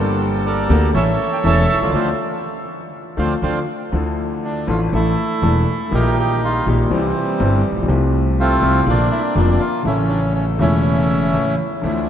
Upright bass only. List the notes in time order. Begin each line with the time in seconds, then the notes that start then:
Already playing: G1
0.70 D2
0.94 A1
1.44 E1
1.75 B1
1.81 C2
1.87 C#2
1.93 D2
3.18 D2
3.42 D2
3.92 D2
4.68 A1
4.92 A1
5.42 E1
5.92 A#1
6.66 A#1
6.91 C2
7.40 G1
7.71 A1
7.77 A#1
7.83 B1
7.89 C2
8.62 C2
8.87 A#1
9.35 F1
9.85 A1
10.59 E1
11.33 A1
11.83 D2